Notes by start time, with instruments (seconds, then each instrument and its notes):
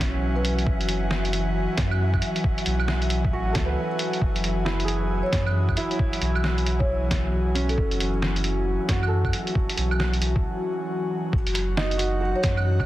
Already playing: sub bass B1, analog synth pad E3 F#3 F#4 F#5 G#5, felt piano C#4, synth texture E5
0.00 kick, snare, closed hi-hat
0.36 marimba B4
0.43 marimba B4, closed hi-hat
0.59 closed hi-hat
0.66 sub bass F#1, kick
0.81 closed hi-hat
0.89 closed hi-hat
1.11 snare
1.25 closed hi-hat
1.33 closed hi-hat
1.78 sub bass F#2, kick, snare, closed hi-hat
1.91 claves
2.14 kick, claves
2.22 closed hi-hat
2.36 closed hi-hat
2.44 kick
2.58 closed hi-hat
2.66 sub bass B1, closed hi-hat
2.80 claves
2.88 snare, claves
3.02 closed hi-hat
3.10 closed hi-hat
3.25 kick
3.33 sub bass A1, felt piano F#4
3.53 sub bass C#2, felt piano A4, kick, snare, closed hi-hat
3.65 felt piano B4
3.99 closed hi-hat
4.13 closed hi-hat
4.22 sub bass F#1, kick
4.36 closed hi-hat
4.44 closed hi-hat
4.65 felt piano E4, snare
4.80 closed hi-hat
4.85 felt piano G#4, closed hi-hat
5.23 marimba C#5
5.33 sub bass F#2, kick, snare, closed hi-hat
5.46 claves
5.69 kick, claves
5.77 felt piano E4, closed hi-hat
5.91 closed hi-hat
5.99 kick
6.13 closed hi-hat
6.21 sub bass B1, closed hi-hat
6.35 claves
6.44 snare, claves
6.58 closed hi-hat
6.66 closed hi-hat
6.79 marimba C#5, kick
7.11 kick, snare, closed hi-hat
7.55 felt piano C#4, closed hi-hat
7.69 marimba A4, closed hi-hat
7.78 sub bass F#1, kick
7.91 closed hi-hat
8.00 closed hi-hat
8.22 snare
8.36 closed hi-hat
8.44 closed hi-hat
8.89 sub bass F#2, felt piano F#4, kick, snare, closed hi-hat
9.03 claves
9.08 felt piano A4
9.25 kick, claves
9.33 closed hi-hat
9.47 closed hi-hat
9.55 kick
9.69 closed hi-hat
9.77 sub bass B1, closed hi-hat
9.91 claves
10.00 snare, claves
10.13 closed hi-hat
10.22 closed hi-hat
10.36 kick
11.32 sub bass F#1, analog synth pad F#3, synth texture A5, kick
11.47 analog synth pad F#5, closed hi-hat
11.55 closed hi-hat, cabasa
11.60 analog synth pad E3
11.77 felt piano D#4, snare
11.91 closed hi-hat
11.97 felt piano F#4, closed hi-hat, cabasa
12.21 felt piano F#4
12.36 marimba C#5
12.44 sub bass F#2, kick, snare, closed hi-hat, cabasa
12.57 claves
12.80 kick, claves